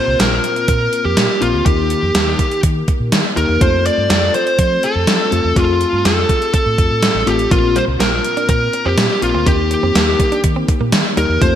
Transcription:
Already playing: fm electric piano A#2 A#3 C4 F4 A#4, lead electric guitar C5
0.08 fingered electric bass C2
0.20 fingered electric bass A#1, lead electric guitar A#4, snare, closed hi-hat
0.44 closed hi-hat
0.56 closed hi-hat
0.68 fingered electric bass A#2, lead electric guitar A#4, kick, closed hi-hat
0.93 closed hi-hat
1.05 fingered electric bass F2, lead electric guitar G4
1.17 fingered electric bass A#2, snare, closed hi-hat
1.41 fingered electric bass A#1, fm electric piano A#3 C4 F4 A#4, lead electric guitar F4, closed hi-hat
1.54 fingered electric bass D2
1.65 fingered electric bass D#2, fm electric piano D#3 A#3 D#4 G4 A#4, lead electric guitar G4, kick, closed hi-hat
1.90 closed hi-hat
2.03 fingered electric bass F2
2.15 fingered electric bass D#2, snare, closed hi-hat
2.39 kick, closed hi-hat
2.51 closed hi-hat
2.63 fingered electric bass D#3, kick, closed hi-hat
2.88 kick, closed hi-hat
3.00 fingered electric bass A#2
3.12 fingered electric bass D#3, snare, closed hi-hat
3.36 fingered electric bass D#2, fm electric piano A#3 D#4 G4 A#4, lead electric guitar A#4, closed hi-hat
3.49 fingered electric bass E2
3.60 fingered electric bass F2, fm electric piano A3 C4 F4 A4, lead electric guitar C5, kick, closed hi-hat
3.86 lead electric guitar D5, closed hi-hat
3.98 fingered electric bass G2
4.10 fingered electric bass F2, lead electric guitar D5, snare, closed hi-hat
4.34 lead electric guitar C5, closed hi-hat
4.47 closed hi-hat
4.59 fingered electric bass F3, lead electric guitar C5, kick, closed hi-hat
4.83 lead electric guitar A4, closed hi-hat
4.96 fingered electric bass F2
5.07 fingered electric bass F3, snare, closed hi-hat
5.31 fingered electric bass F2, fm electric piano A3 C4 F4 A4, closed hi-hat
5.44 fingered electric bass E2
5.55 fingered electric bass F2, fm electric piano A3 C4 F4 G#4, lead electric guitar F4, kick, closed hi-hat
5.62 fm electric piano A4
5.81 closed hi-hat
5.93 fingered electric bass G2
6.05 fingered electric bass F2, lead electric guitar A4, snare, closed hi-hat
6.29 kick, closed hi-hat
6.42 closed hi-hat
6.54 lead electric guitar A4, kick, closed hi-hat
6.66 fingered electric bass A2
6.78 fingered electric bass F2, kick, closed hi-hat
6.90 fingered electric bass A2
7.03 snare, closed hi-hat
7.15 fingered electric bass A1
7.26 fingered electric bass A1, fm electric piano A3 C4 F4 A4, lead electric guitar G4, closed hi-hat
7.39 closed hi-hat
7.51 fingered electric bass A#1, fm electric piano A#2 A#3 C4 F4 A#4, clean electric guitar F3, lead electric guitar F4, kick, closed hi-hat
7.76 clean electric guitar G3, lead electric guitar C5, closed hi-hat
7.88 fingered electric bass C2, muted clean electric guitar stroke
8.00 fingered electric bass A#1, clean electric guitar A#3, lead electric guitar A#4, snare, closed hi-hat
8.13 muted clean electric guitar stroke
8.24 closed hi-hat
8.37 clean electric guitar D4, closed hi-hat
8.49 fingered electric bass A#2, clean electric guitar C4, lead electric guitar A#4, kick, closed hi-hat
8.73 muted clean electric guitar stroke, closed hi-hat
8.86 fingered electric bass F2, clean electric guitar C4, lead electric guitar G4
8.98 fingered electric bass A#2, clean electric guitar A#3, snare, closed hi-hat
9.10 muted clean electric guitar stroke
9.21 fingered electric bass A#1, fm electric piano A#3 C4 F4 A#4, lead electric guitar F4, closed hi-hat
9.34 fingered electric bass D2, clean electric guitar C4
9.46 fingered electric bass D#2, fm electric piano D#3 A#3 D#4 G4 A#4, clean electric guitar D#4, lead electric guitar G4, kick, closed hi-hat
9.71 muted clean electric guitar stroke, closed hi-hat
9.83 fingered electric bass F2, clean electric guitar C4
9.95 fingered electric bass D#2, clean electric guitar A#3, snare, closed hi-hat
10.20 muted clean electric guitar stroke, kick, closed hi-hat
10.32 clean electric guitar D4, closed hi-hat
10.44 fingered electric bass D#3, kick, closed hi-hat
10.56 clean electric guitar C4
10.68 muted clean electric guitar stroke, kick, closed hi-hat
10.80 fingered electric bass A#2, clean electric guitar A#3
10.92 fingered electric bass D#3, snare, closed hi-hat
11.17 fingered electric bass D#2, clean electric guitar G3, fm electric piano A#3 D#4 G4 A#4, lead electric guitar A#4, closed hi-hat
11.29 fingered electric bass E2
11.41 fingered electric bass F2, clean electric guitar F3, fm electric piano A3 C4 F4 A4, lead electric guitar C5, kick, closed hi-hat

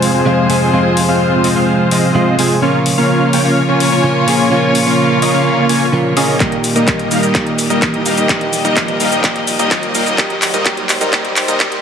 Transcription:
Already playing: string section F2 F3 G#4 C5, clean electric guitar C3 F3 G#3 F4, supersaw synth G#3 C4 F4 C5 G#5, riser
0.02 open hi-hat
0.14 supersaw synth G#3 C4 F4 C5 G#5
0.25 clean electric guitar C3 F3 G#3 F4
0.49 clean electric guitar C3 F3 G#3 G#4, open hi-hat
0.72 clean electric guitar C3 F3 G#3 F4, supersaw synth G#3 C4 F4 C5 G#5
0.97 open hi-hat
1.09 supersaw synth G#3 C4 F4 C5 F5
1.44 supersaw synth G#3 C4 F4 C5 D#5, open hi-hat
1.56 supersaw synth G#3 C4 F4 C5 F5
1.91 supersaw synth G#3 C4 F4 C5 D#5, open hi-hat
2.14 clean electric guitar C3 F3 G#3 F4
2.38 clean electric guitar C3 F3 G#3 G#4, supersaw synth G#3 C4 F4 C5 G#5, open hi-hat
2.61 string section A#2 A#3 F4 C#5, clean electric guitar C#3 F3 A#3 F4, supersaw synth A#3 C#4 F4 C#5 F5
2.86 open hi-hat
2.98 supersaw synth A#3 C#4 F4 C#5 F5
3.33 supersaw synth A#3 C#4 F4 C#5 G5, open hi-hat
3.45 supersaw synth A#3 C#4 F4 C#5 F5
3.69 supersaw synth A#3 C#4 F4 C#5 G#5
3.80 open hi-hat
3.92 supersaw synth A#3 C#4 F4 C#5 G#5
4.03 clean electric guitar C#3 F3 A#3 F4
4.27 clean electric guitar C#3 F3 A#3 G#4, open hi-hat
4.50 clean electric guitar C#3 F3 A#3 F4, supersaw synth A#3 C#4 F4 C#5 G#5
4.75 open hi-hat
4.87 supersaw synth A#3 C#4 F4 C#5 F5
5.22 supersaw synth A#3 C#4 F4 C#5 D#5, open hi-hat
5.34 supersaw synth A#3 C#4 F4 C#5 F5
5.69 supersaw synth A#3 C#4 F4 C#5 G#5, open hi-hat
5.92 clean electric guitar C#3 F3 A#3 F4
6.16 clean electric guitar C#3 F3 A#3 G#4, supersaw synth A#3 C#4 F4 C#5 D#5, open hi-hat
6.39 clean electric guitar A#2 D#3 G3 A#3 G4, supersaw synth G3 A#3 D#4 A#4, string section G4 D#5, kick, clap, closed hi-hat, shaker
6.52 closed hi-hat
6.64 open hi-hat, shaker
6.76 supersaw synth G3 A#3 D#4 A#4 D#5, closed hi-hat, shaker
6.88 kick, clap, closed hi-hat, shaker
6.99 closed hi-hat
7.11 supersaw synth G3 A#3 D#4 A#4 F5, open hi-hat, shaker
7.23 supersaw synth G3 A#3 D#4 A#4 D#5, closed hi-hat, shaker
7.34 clean electric guitar A#2 D#3 G3 A#3 G4, supersaw synth A#3 D#4 A#4 D#5, kick, clap, closed hi-hat, shaker
7.47 closed hi-hat
7.58 open hi-hat, shaker
7.70 supersaw synth G3 A#3 D#4 A#4 D#5, closed hi-hat, shaker
7.82 kick, clap, closed hi-hat, shaker
7.94 closed hi-hat
8.06 supersaw synth G3 A#3 D#4 A#4 F5, open hi-hat, shaker
8.17 supersaw synth G3 A#3 D#4 A#4 D#5, closed hi-hat, shaker
8.28 clean electric guitar A#2 D#3 G3 A#3 G4, kick, clap, closed hi-hat, shaker
8.41 closed hi-hat
8.53 open hi-hat, shaker
8.65 supersaw synth G3 A#3 D#4 A#4 D#5, closed hi-hat, shaker
8.77 kick, clap, closed hi-hat, shaker
8.88 closed hi-hat
9.00 supersaw synth G3 A#3 D#4 A#4 F5, open hi-hat, shaker
9.12 supersaw synth G3 A#3 D#4 A#4 D#5, closed hi-hat, shaker
9.23 clean electric guitar A#2 D#3 G3 A#3 G4, supersaw synth G3 A#3 D#4 D#5, kick, clap, closed hi-hat, shaker
9.36 closed hi-hat
9.47 open hi-hat, shaker
9.59 supersaw synth G3 A#3 D#4 A#4 D#5, closed hi-hat, shaker
9.71 kick, clap, closed hi-hat, shaker
9.83 closed hi-hat
9.95 supersaw synth G3 A#3 D#4 A#4 F5, open hi-hat, shaker
10.06 supersaw synth G3 A#3 D#4 A#4 D#5, closed hi-hat, shaker
10.17 string section G#2 C5, clean electric guitar A#2 D#3 G3 A#3 G4, supersaw synth G3 A#3 D#4 A#4 D#5, kick, clap, closed hi-hat, shaker
10.30 closed hi-hat
10.42 clap, open hi-hat, shaker
10.54 supersaw synth G3 A#3 D#4 A#4 D#5, closed hi-hat, shaker
10.64 clean electric guitar A#2 D#3 G3 A#3 G4, supersaw synth A#3 D#4 A#4 D#5, kick, clap, closed hi-hat, shaker
10.77 closed hi-hat
10.89 clap, open hi-hat, shaker
11.01 supersaw synth G3 A#3 D#4 A#4 D#5, closed hi-hat, shaker
11.12 clean electric guitar A#2 D#3 G3 A#3 G4, supersaw synth A#3 D#4 A#4, kick, clap, closed hi-hat, shaker
11.25 closed hi-hat
11.36 clap, open hi-hat, shaker
11.48 supersaw synth G3 A#3 D#4 A#4 D#5, closed hi-hat, shaker
11.59 clean electric guitar A#2 D#3 G3 A#3 G4, supersaw synth G3 A#3 D#4 D#5, kick, clap, closed hi-hat, shaker
11.72 closed hi-hat

